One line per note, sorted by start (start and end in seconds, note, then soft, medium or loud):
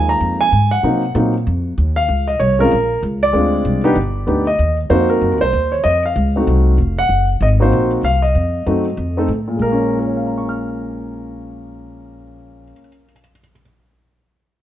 0.00 0.20 D#2 medium
0.00 0.45 F3 medium
0.00 0.45 G#3 soft
0.00 0.45 A#3 medium
0.00 0.46 D#4 medium
0.09 0.38 A#5 medium
0.20 0.51 F2 medium
0.41 0.73 G#5 loud
0.52 0.82 G#2 medium
0.71 1.11 F#5 medium
0.83 1.14 C3 medium
0.83 1.01 F#3 soft
0.83 1.01 A#3 soft
0.83 1.01 C4 soft
0.83 1.01 D#4 medium
1.15 1.45 A#2 medium
1.15 1.32 F#3 medium
1.15 1.32 A#3 medium
1.15 1.33 C4 soft
1.15 1.33 D#4 medium
1.47 1.77 F2 medium
1.78 2.08 D#2 medium
1.96 2.29 F5 medium
2.09 2.39 C#2 medium
2.28 2.39 D#5 medium
2.40 2.70 C2 medium
2.40 2.60 C#5 medium
2.59 2.70 G#3 medium
2.59 2.70 C4 medium
2.59 2.70 C#4 medium
2.59 2.70 F4 medium
2.59 3.00 A#4 medium
2.71 3.02 A#1 medium
3.03 3.33 C#2 medium
3.23 4.44 D5 medium
3.33 3.64 D2 medium
3.33 3.80 G#3 medium
3.33 3.81 C4 medium
3.33 3.81 D4 medium
3.33 3.81 F4 medium
3.65 3.95 C2 medium
3.84 3.95 B3 medium
3.84 3.95 D4 medium
3.84 3.95 D#4 medium
3.84 3.95 G4 medium
3.95 4.26 G1 medium
4.27 4.58 D2 medium
4.27 4.45 B3 medium
4.27 4.45 D4 soft
4.27 4.45 D#4 soft
4.27 4.45 G4 medium
4.47 4.76 D#5 medium
4.59 4.89 D#2 medium
4.90 5.20 F2 medium
4.90 5.37 A#3 medium
4.90 5.37 C4 medium
4.90 5.37 D#4 medium
4.90 5.37 F#4 medium
4.90 5.08 C5 medium
5.10 5.42 A#4 medium
5.21 5.32 F#2 medium
5.32 5.42 D#2 soft
5.41 5.52 C2 medium
5.41 5.73 C5 medium
5.53 5.83 D#2 medium
5.72 5.84 C#5 medium
5.84 6.15 F2 medium
5.84 6.02 D#5 loud
6.06 7.01 F5 medium
6.16 6.46 C#2 medium
6.36 6.76 A3 medium
6.36 6.76 C4 soft
6.36 6.77 D#4 medium
6.36 6.77 F#4 medium
6.47 6.77 C2 medium
6.78 7.08 F1 medium
6.99 7.27 F#5 loud
7.09 7.39 F#1 medium
7.41 7.71 G#1 medium
7.41 7.47 D#5 medium
7.60 8.00 A#3 medium
7.60 8.01 C4 medium
7.60 8.01 D#4 medium
7.60 8.01 F#4 medium
7.60 7.90 C5 medium
7.72 8.02 A#1 medium
8.03 8.33 C2 medium
8.03 8.24 F5 medium
8.22 9.24 D#5 medium
8.35 8.65 F2 medium
8.66 8.96 F#2 medium
8.66 8.84 A3 medium
8.66 8.84 C4 soft
8.66 8.84 D#4 soft
8.66 8.84 F#4 medium
8.97 9.27 F2 medium
9.17 9.27 A3 medium
9.17 9.28 C4 medium
9.17 9.28 D#4 medium
9.17 9.28 A4 medium
9.28 9.59 A2 medium
9.48 12.64 A#2 medium
9.56 12.71 A#1 medium
9.56 12.72 G#3 soft
9.62 12.80 A#3 soft
9.62 9.98 A#4 medium
9.72 12.88 C#4 medium
9.92 13.04 F4 soft
9.99 13.11 A#4 soft
10.07 13.19 C#5 soft
10.17 13.29 F5 soft
10.27 13.39 A#5 soft
10.38 13.50 C#6 soft
10.49 13.61 F6 soft